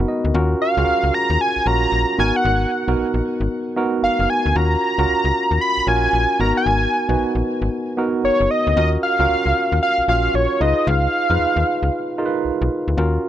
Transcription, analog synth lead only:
0, 0, Header, 1, 2, 480
1, 0, Start_track
1, 0, Key_signature, -6, "minor"
1, 0, Tempo, 526316
1, 315, Time_signature, 4, 2, 24, 8
1, 12119, End_track
2, 0, Start_track
2, 0, Title_t, "Analog synth lead"
2, 0, Program_c, 0, 81
2, 562, Note_on_c, 0, 77, 102
2, 1042, Note_on_c, 0, 82, 101
2, 1056, Note_off_c, 0, 77, 0
2, 1286, Note_on_c, 0, 80, 106
2, 1300, Note_off_c, 0, 82, 0
2, 1524, Note_on_c, 0, 82, 106
2, 1537, Note_off_c, 0, 80, 0
2, 1997, Note_off_c, 0, 82, 0
2, 2003, Note_on_c, 0, 80, 92
2, 2154, Note_on_c, 0, 78, 86
2, 2168, Note_off_c, 0, 80, 0
2, 2630, Note_off_c, 0, 78, 0
2, 3681, Note_on_c, 0, 77, 94
2, 3918, Note_on_c, 0, 80, 90
2, 3932, Note_off_c, 0, 77, 0
2, 4161, Note_on_c, 0, 82, 105
2, 4175, Note_off_c, 0, 80, 0
2, 5114, Note_off_c, 0, 82, 0
2, 5119, Note_on_c, 0, 83, 111
2, 5361, Note_on_c, 0, 80, 109
2, 5375, Note_off_c, 0, 83, 0
2, 5841, Note_on_c, 0, 82, 100
2, 5854, Note_off_c, 0, 80, 0
2, 5989, Note_off_c, 0, 82, 0
2, 5994, Note_on_c, 0, 80, 95
2, 6674, Note_off_c, 0, 80, 0
2, 7521, Note_on_c, 0, 73, 91
2, 7758, Note_on_c, 0, 75, 103
2, 7772, Note_off_c, 0, 73, 0
2, 7992, Note_off_c, 0, 75, 0
2, 7998, Note_on_c, 0, 75, 109
2, 8105, Note_off_c, 0, 75, 0
2, 8236, Note_on_c, 0, 77, 127
2, 8919, Note_off_c, 0, 77, 0
2, 8961, Note_on_c, 0, 77, 109
2, 9182, Note_off_c, 0, 77, 0
2, 9201, Note_on_c, 0, 77, 98
2, 9440, Note_on_c, 0, 73, 95
2, 9453, Note_off_c, 0, 77, 0
2, 9678, Note_on_c, 0, 75, 96
2, 9692, Note_off_c, 0, 73, 0
2, 9918, Note_on_c, 0, 77, 105
2, 9932, Note_off_c, 0, 75, 0
2, 11356, Note_off_c, 0, 77, 0
2, 12119, End_track
0, 0, End_of_file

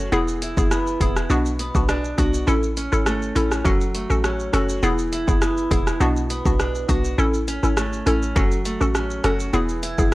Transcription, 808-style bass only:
0, 0, Header, 1, 2, 480
1, 0, Start_track
1, 0, Tempo, 588235
1, 1061, Time_signature, 4, 2, 24, 8
1, 8274, End_track
2, 0, Start_track
2, 0, Title_t, "808-style bass"
2, 0, Program_c, 0, 38
2, 101, Note_on_c, 0, 28, 110
2, 437, Note_off_c, 0, 28, 0
2, 467, Note_on_c, 0, 30, 87
2, 790, Note_off_c, 0, 30, 0
2, 820, Note_on_c, 0, 28, 100
2, 1040, Note_off_c, 0, 28, 0
2, 1059, Note_on_c, 0, 35, 112
2, 1396, Note_off_c, 0, 35, 0
2, 1426, Note_on_c, 0, 35, 89
2, 1750, Note_off_c, 0, 35, 0
2, 1782, Note_on_c, 0, 35, 89
2, 2001, Note_off_c, 0, 35, 0
2, 2020, Note_on_c, 0, 33, 114
2, 2356, Note_off_c, 0, 33, 0
2, 2389, Note_on_c, 0, 32, 86
2, 2711, Note_off_c, 0, 32, 0
2, 2741, Note_on_c, 0, 33, 98
2, 2960, Note_off_c, 0, 33, 0
2, 2981, Note_on_c, 0, 30, 109
2, 3317, Note_off_c, 0, 30, 0
2, 3349, Note_on_c, 0, 33, 84
2, 3671, Note_off_c, 0, 33, 0
2, 3701, Note_on_c, 0, 30, 88
2, 3921, Note_off_c, 0, 30, 0
2, 3940, Note_on_c, 0, 28, 111
2, 4276, Note_off_c, 0, 28, 0
2, 4309, Note_on_c, 0, 30, 85
2, 4631, Note_off_c, 0, 30, 0
2, 4661, Note_on_c, 0, 28, 101
2, 4880, Note_off_c, 0, 28, 0
2, 4900, Note_on_c, 0, 35, 121
2, 5236, Note_off_c, 0, 35, 0
2, 5268, Note_on_c, 0, 35, 92
2, 5590, Note_off_c, 0, 35, 0
2, 5623, Note_on_c, 0, 35, 85
2, 5841, Note_off_c, 0, 35, 0
2, 5861, Note_on_c, 0, 33, 109
2, 6196, Note_off_c, 0, 33, 0
2, 6228, Note_on_c, 0, 32, 91
2, 6551, Note_off_c, 0, 32, 0
2, 6582, Note_on_c, 0, 33, 93
2, 6801, Note_off_c, 0, 33, 0
2, 6822, Note_on_c, 0, 30, 110
2, 7157, Note_off_c, 0, 30, 0
2, 7189, Note_on_c, 0, 33, 84
2, 7511, Note_off_c, 0, 33, 0
2, 7542, Note_on_c, 0, 30, 92
2, 7761, Note_off_c, 0, 30, 0
2, 7782, Note_on_c, 0, 28, 111
2, 8117, Note_off_c, 0, 28, 0
2, 8148, Note_on_c, 0, 30, 86
2, 8274, Note_off_c, 0, 30, 0
2, 8274, End_track
0, 0, End_of_file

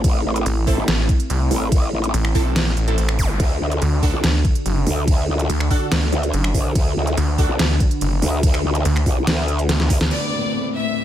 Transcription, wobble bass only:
0, 0, Header, 1, 2, 480
1, 0, Start_track
1, 0, Tempo, 419580
1, 47, Time_signature, 4, 2, 24, 8
1, 12635, End_track
2, 0, Start_track
2, 0, Title_t, "Wobble bass"
2, 0, Program_c, 0, 39
2, 47, Note_on_c, 0, 33, 96
2, 268, Note_off_c, 0, 33, 0
2, 286, Note_on_c, 0, 33, 95
2, 507, Note_off_c, 0, 33, 0
2, 890, Note_on_c, 0, 31, 94
2, 988, Note_off_c, 0, 31, 0
2, 1726, Note_on_c, 0, 33, 104
2, 2188, Note_off_c, 0, 33, 0
2, 2206, Note_on_c, 0, 33, 97
2, 2428, Note_off_c, 0, 33, 0
2, 3887, Note_on_c, 0, 38, 98
2, 4108, Note_off_c, 0, 38, 0
2, 4127, Note_on_c, 0, 38, 99
2, 4348, Note_off_c, 0, 38, 0
2, 4730, Note_on_c, 0, 36, 96
2, 4828, Note_off_c, 0, 36, 0
2, 5566, Note_on_c, 0, 38, 102
2, 6028, Note_off_c, 0, 38, 0
2, 6046, Note_on_c, 0, 38, 98
2, 6268, Note_off_c, 0, 38, 0
2, 7007, Note_on_c, 0, 38, 98
2, 7228, Note_off_c, 0, 38, 0
2, 7486, Note_on_c, 0, 36, 101
2, 7708, Note_off_c, 0, 36, 0
2, 7726, Note_on_c, 0, 38, 98
2, 7948, Note_off_c, 0, 38, 0
2, 7967, Note_on_c, 0, 38, 99
2, 8188, Note_off_c, 0, 38, 0
2, 8571, Note_on_c, 0, 36, 97
2, 8668, Note_off_c, 0, 36, 0
2, 9407, Note_on_c, 0, 38, 101
2, 9868, Note_off_c, 0, 38, 0
2, 9886, Note_on_c, 0, 38, 99
2, 10108, Note_off_c, 0, 38, 0
2, 10366, Note_on_c, 0, 36, 95
2, 10588, Note_off_c, 0, 36, 0
2, 10606, Note_on_c, 0, 38, 98
2, 11068, Note_off_c, 0, 38, 0
2, 11326, Note_on_c, 0, 38, 102
2, 11430, Note_off_c, 0, 38, 0
2, 12635, End_track
0, 0, End_of_file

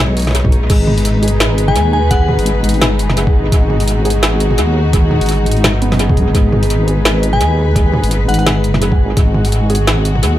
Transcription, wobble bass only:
0, 0, Header, 1, 2, 480
1, 0, Start_track
1, 0, Key_signature, 5, "minor"
1, 0, Tempo, 352941
1, 949, Time_signature, 4, 2, 24, 8
1, 14128, End_track
2, 0, Start_track
2, 0, Title_t, "Wobble bass"
2, 0, Program_c, 0, 39
2, 0, Note_on_c, 0, 35, 79
2, 937, Note_off_c, 0, 35, 0
2, 952, Note_on_c, 0, 32, 96
2, 2388, Note_on_c, 0, 39, 108
2, 2409, Note_off_c, 0, 32, 0
2, 3230, Note_off_c, 0, 39, 0
2, 3246, Note_on_c, 0, 32, 105
2, 3575, Note_off_c, 0, 32, 0
2, 3590, Note_on_c, 0, 32, 104
2, 4069, Note_on_c, 0, 30, 83
2, 4090, Note_off_c, 0, 32, 0
2, 4536, Note_off_c, 0, 30, 0
2, 4551, Note_on_c, 0, 32, 84
2, 4774, Note_off_c, 0, 32, 0
2, 4789, Note_on_c, 0, 32, 100
2, 6231, Note_on_c, 0, 39, 106
2, 6251, Note_off_c, 0, 32, 0
2, 7071, Note_off_c, 0, 39, 0
2, 7091, Note_on_c, 0, 32, 103
2, 7418, Note_off_c, 0, 32, 0
2, 7433, Note_on_c, 0, 32, 101
2, 7912, Note_on_c, 0, 30, 84
2, 7932, Note_off_c, 0, 32, 0
2, 8391, Note_on_c, 0, 44, 83
2, 8411, Note_off_c, 0, 30, 0
2, 8518, Note_off_c, 0, 44, 0
2, 8531, Note_on_c, 0, 32, 93
2, 8623, Note_off_c, 0, 32, 0
2, 8630, Note_on_c, 0, 32, 98
2, 10070, Note_on_c, 0, 39, 106
2, 10090, Note_off_c, 0, 32, 0
2, 10910, Note_off_c, 0, 39, 0
2, 10928, Note_on_c, 0, 32, 100
2, 11256, Note_off_c, 0, 32, 0
2, 11271, Note_on_c, 0, 32, 103
2, 11751, Note_on_c, 0, 30, 85
2, 11772, Note_off_c, 0, 32, 0
2, 12217, Note_off_c, 0, 30, 0
2, 12230, Note_on_c, 0, 32, 84
2, 12453, Note_off_c, 0, 32, 0
2, 12471, Note_on_c, 0, 32, 102
2, 13910, Note_on_c, 0, 39, 105
2, 13931, Note_off_c, 0, 32, 0
2, 14128, Note_off_c, 0, 39, 0
2, 14128, End_track
0, 0, End_of_file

